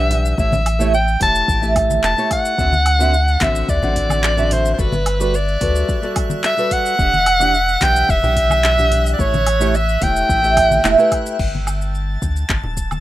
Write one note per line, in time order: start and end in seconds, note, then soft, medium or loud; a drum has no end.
0.00 0.34 B1 medium
0.00 0.35 E3 medium
0.00 0.35 D4 medium
0.00 0.35 G4 medium
0.00 0.39 E5 loud
0.00 0.36 F#5 medium
0.11 open hi-hat medium
0.11 low conga medium
0.25 shaker medium
0.37 1.17 A1 loud
0.37 0.52 A3 medium
0.37 0.52 E4 medium
0.37 0.53 G4 medium
0.37 0.53 C#5 medium
0.37 0.90 E5 loud
0.37 kick loud
0.37 shaker medium
0.52 high conga medium
0.52 low conga medium
0.52 shaker soft
0.66 open hi-hat medium
0.66 low woodblock medium
0.79 0.93 A3 medium
0.79 0.93 E4 medium
0.79 0.94 G4 medium
0.79 0.94 C#5 loud
0.79 shaker medium
0.94 1.20 G5 loud
0.94 shaker medium
1.08 shaker soft
1.20 1.43 E1 loud
1.20 1.59 A3 medium
1.20 1.59 E4 medium
1.20 1.59 G4 medium
1.20 1.60 C#5 medium
1.20 1.73 A5 loud
1.20 kick loud
1.20 open hi-hat medium
1.20 high conga medium
1.35 shaker medium
1.48 1.99 A1 loud
1.48 kick loud
1.48 shaker medium
1.61 2.14 A3 medium
1.61 2.14 E4 medium
1.61 2.14 G4 medium
1.61 2.15 E5 medium
1.61 shaker soft
1.76 kick loud
1.76 open hi-hat medium
1.76 low woodblock medium
1.90 high conga medium
1.90 shaker medium
2.03 2.15 E1 loud
2.03 2.30 A5 loud
2.03 clap medium
2.03 shaker medium
2.17 2.55 A3 medium
2.17 2.55 E4 medium
2.17 2.56 G4 medium
2.17 2.56 C#5 medium
2.17 shaker soft
2.31 3.44 F#5 loud
2.31 kick medium
2.31 open hi-hat medium
2.31 low woodblock medium
2.45 shaker medium
2.58 3.37 D2 loud
2.58 2.72 D3 medium
2.58 2.73 C4 medium
2.58 2.73 F#4 medium
2.58 11.40 E5 medium
2.58 2.74 E5 medium
2.58 11.41 F#6 medium
2.58 kick loud
2.58 shaker medium
2.73 high conga medium
2.73 shaker soft
2.86 open hi-hat medium
2.86 low woodblock medium
2.99 3.13 D3 medium
2.99 3.13 C4 medium
2.99 3.14 F#4 medium
2.99 3.14 E5 loud
2.99 shaker medium
3.14 shaker medium
3.28 shaker soft
3.40 3.64 A1 loud
3.40 3.79 D3 medium
3.40 3.79 C4 medium
3.40 3.80 F#4 medium
3.40 3.80 E5 medium
3.40 3.71 E5 medium
3.40 kick medium
3.40 clap medium
3.40 open hi-hat medium
3.40 high conga medium
3.56 shaker medium
3.69 3.80 D2 medium
3.69 4.54 D5 loud
3.69 kick loud
3.69 shaker medium
3.82 4.75 A1 medium
3.82 4.34 D3 medium
3.82 4.34 C4 medium
3.82 4.35 F#4 medium
3.82 4.35 F#5 medium
3.82 low conga medium
3.82 shaker soft
3.96 kick medium
3.96 open hi-hat medium
4.10 high conga medium
4.10 low woodblock medium
4.10 shaker medium
4.24 clap medium
4.24 shaker medium
4.37 4.75 D3 medium
4.37 4.75 C4 medium
4.37 4.76 F#4 medium
4.37 4.76 E5 medium
4.37 low conga medium
4.37 shaker soft
4.51 4.73 C5 medium
4.51 open hi-hat medium
4.51 low conga medium
4.65 shaker medium
4.74 4.81 C5 medium
4.78 5.57 G1 loud
4.78 4.92 G3 medium
4.78 4.93 F#4 medium
4.78 4.93 A4 medium
4.78 4.94 B4 medium
4.78 5.36 B4 medium
4.78 kick loud
4.78 shaker medium
4.92 high conga medium
4.92 low conga medium
4.92 shaker soft
5.06 open hi-hat loud
5.06 low woodblock medium
5.20 5.34 G3 medium
5.20 5.34 F#4 medium
5.20 5.34 A4 medium
5.20 5.35 B4 loud
5.20 shaker medium
5.34 6.17 D5 medium
5.34 shaker soft
5.48 shaker soft
5.60 5.84 D2 medium
5.60 5.99 G3 medium
5.60 6.00 F#4 medium
5.60 6.00 A4 medium
5.60 6.00 B4 medium
5.60 kick loud
5.60 open hi-hat medium
5.60 high conga medium
5.76 shaker medium
5.89 kick loud
5.89 shaker medium
6.02 6.54 G3 medium
6.02 6.55 F#4 medium
6.02 6.55 A4 medium
6.02 6.55 D5 medium
6.02 shaker soft
6.16 kick loud
6.16 open hi-hat medium
6.16 low woodblock medium
6.30 high conga medium
6.30 shaker medium
6.44 6.74 E5 loud
6.44 clap medium
6.44 shaker medium
6.57 6.95 G3 medium
6.57 6.96 F#4 medium
6.57 6.96 A4 medium
6.57 6.96 B4 medium
6.57 shaker soft
6.71 7.84 F#5 loud
6.71 kick medium
6.71 open hi-hat medium
6.86 shaker medium
6.98 7.78 E1 loud
6.98 7.13 E3 medium
6.98 7.13 D4 medium
6.98 7.13 G4 medium
6.98 7.14 F#5 medium
6.98 kick loud
6.98 shaker medium
7.13 high conga medium
7.13 shaker soft
7.26 open hi-hat loud
7.26 low woodblock medium
7.39 7.53 E3 loud
7.39 7.54 D4 medium
7.39 7.54 G4 medium
7.39 7.55 F#5 loud
7.39 shaker medium
7.54 shaker medium
7.69 shaker soft
7.80 8.04 B1 loud
7.80 8.19 E3 medium
7.80 8.20 D4 medium
7.80 8.20 G4 medium
7.80 8.20 F#5 medium
7.80 8.12 G5 loud
7.80 kick medium
7.80 clap medium
7.80 open hi-hat medium
7.80 high conga medium
7.96 shaker medium
8.09 8.21 E1 medium
8.09 9.13 E5 loud
8.09 kick loud
8.09 shaker medium
8.22 9.15 B1 medium
8.22 8.74 E3 medium
8.22 8.75 D4 medium
8.22 8.75 G4 medium
8.22 8.75 G5 medium
8.22 low conga medium
8.22 shaker soft
8.37 kick medium
8.37 open hi-hat loud
8.50 high conga medium
8.50 low woodblock medium
8.50 shaker medium
8.64 clap medium
8.64 shaker medium
8.77 9.15 E3 medium
8.77 9.16 D4 medium
8.77 9.16 G4 medium
8.77 9.17 F#5 medium
8.77 low conga medium
8.77 shaker soft
8.92 open hi-hat medium
8.92 low conga medium
9.06 shaker medium
9.13 9.22 D5 medium
9.18 9.98 A1 loud
9.18 9.33 A3 medium
9.18 9.33 E4 medium
9.18 9.34 G4 medium
9.18 9.34 C#5 medium
9.18 9.77 C#5 loud
9.18 kick loud
9.18 shaker medium
9.34 high conga medium
9.34 low conga medium
9.34 shaker soft
9.46 open hi-hat loud
9.46 low woodblock medium
9.60 9.74 A3 medium
9.60 9.74 E4 medium
9.60 9.75 G4 medium
9.60 9.75 C#5 loud
9.60 shaker medium
9.75 10.04 E5 loud
9.75 shaker medium
9.89 shaker soft
10.01 10.24 E1 loud
10.01 10.40 A3 medium
10.01 10.40 E4 medium
10.01 10.40 G4 medium
10.01 10.41 C#5 medium
10.01 11.12 G5 loud
10.01 kick loud
10.01 open hi-hat medium
10.01 high conga medium
10.16 shaker medium
10.29 10.80 A1 loud
10.29 kick loud
10.29 shaker medium
10.43 10.81 A3 medium
10.43 10.82 E4 medium
10.43 10.82 G4 medium
10.43 10.82 E5 medium
10.43 shaker soft
10.57 kick loud
10.57 open hi-hat loud
10.57 low woodblock medium
10.71 high conga medium
10.71 shaker medium
10.84 10.96 E1 loud
10.84 10.95 A3 medium
10.84 10.95 E4 medium
10.84 10.95 G4 medium
10.84 10.96 E5 loud
10.84 clap medium
10.84 shaker medium
10.97 11.36 A3 medium
10.97 11.36 E4 medium
10.97 11.36 G4 medium
10.97 11.37 B4 medium
10.97 shaker soft
11.12 kick medium
11.12 open hi-hat medium
11.12 low woodblock medium
11.26 shaker medium
11.39 12.18 G1 loud
11.39 13.00 A5 medium
11.39 13.00 A6 medium
11.39 kick loud
11.39 crash medium
11.39 shaker soft
11.55 high conga medium
11.67 low woodblock medium
11.67 shaker medium
11.82 shaker soft
11.95 shaker soft
12.22 12.44 D2 medium
12.22 kick medium
12.22 high conga medium
12.22 shaker medium
12.36 shaker soft
12.49 12.61 G1 medium
12.49 kick loud
12.49 clap medium
12.49 shaker soft
12.64 13.00 D1 medium
12.64 low conga medium
12.77 kick medium
12.77 shaker medium
12.91 high conga medium
12.91 low woodblock medium
12.91 shaker soft